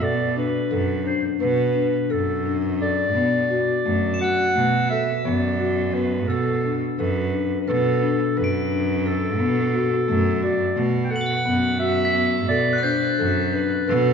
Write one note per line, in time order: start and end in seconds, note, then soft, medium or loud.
0.01 0.55 B2 medium
0.01 0.27 A4 medium
0.01 0.37 D5 loud
0.36 0.62 D4 medium
0.36 1.02 B4 medium
0.71 1.24 F#2 loud
0.71 0.96 A4 medium
1.06 1.31 D4 medium
1.06 1.22 C5 medium
1.40 1.95 B2 loud
1.40 1.66 B4 medium
1.40 2.13 B4 loud
1.75 2.01 D4 medium
2.10 3.18 F#2 loud
2.10 2.36 A4 medium
2.10 2.55 A4 medium
2.46 2.71 D4 medium
2.81 3.06 A4 medium
2.81 4.17 D5 loud
3.15 3.70 B2 medium
3.15 3.41 B3 medium
3.50 3.76 F#4 medium
3.85 4.39 F#2 loud
3.85 4.11 A3 medium
4.14 4.86 E7 medium
4.19 4.46 F#4 medium
4.19 4.87 F#5 loud
4.19 4.89 A7 soft
4.24 4.91 B7 soft
4.56 5.09 B2 loud
4.56 4.81 A3 medium
4.90 5.16 A4 medium
4.90 5.23 E5 loud
5.25 6.31 F#2 loud
5.25 5.50 B3 medium
5.25 5.96 D5 medium
5.60 5.85 F#4 medium
5.94 6.20 B3 medium
5.94 6.29 B4 medium
6.28 6.83 B2 medium
6.28 6.72 A4 loud
6.28 6.55 A4 medium
6.65 6.90 D4 medium
6.99 7.52 F#2 loud
6.99 7.24 A4 medium
6.99 7.57 B4 medium
7.33 7.58 D4 medium
7.61 7.70 B4 medium
7.67 8.21 B2 loud
7.67 8.39 A4 loud
7.67 7.93 B4 medium
8.02 8.27 D4 medium
8.37 9.42 F#2 loud
8.37 8.62 A4 loud
8.37 9.08 B4 loud
8.44 9.15 D7 medium
8.71 8.96 D4 medium
9.06 9.31 A4 medium
9.06 10.43 A4 loud
9.40 9.93 B2 loud
9.40 9.65 B3 loud
9.74 9.99 F#4 medium
10.08 10.61 F#2 loud
10.08 10.33 A3 medium
10.43 10.67 F#4 medium
10.43 10.82 D5 loud
10.76 11.30 B2 loud
10.76 11.01 A3 medium
11.04 11.12 G5 medium
11.10 11.36 A4 medium
11.10 11.79 F#5 loud
11.16 11.88 F#7 medium
11.21 11.91 A7 medium
11.26 11.94 B7 medium
11.46 12.51 F#2 loud
11.46 11.71 B3 loud
11.80 12.05 F#4 medium
11.80 12.45 E5 loud
12.05 12.77 B6 medium
12.15 12.40 B3 medium
12.49 13.03 B2 medium
12.49 12.75 A4 medium
12.49 12.81 D5 loud
12.73 13.45 F#6 medium
12.78 13.47 A6 medium
12.83 13.09 D4 medium
12.83 13.55 C5 loud
12.83 13.50 B6 medium
13.19 13.72 F#2 loud
13.19 13.44 A4 medium
13.53 13.78 D4 medium
13.53 13.90 B4 medium
13.88 14.13 B2 loud
13.88 14.13 A4 medium
13.88 14.13 B4 loud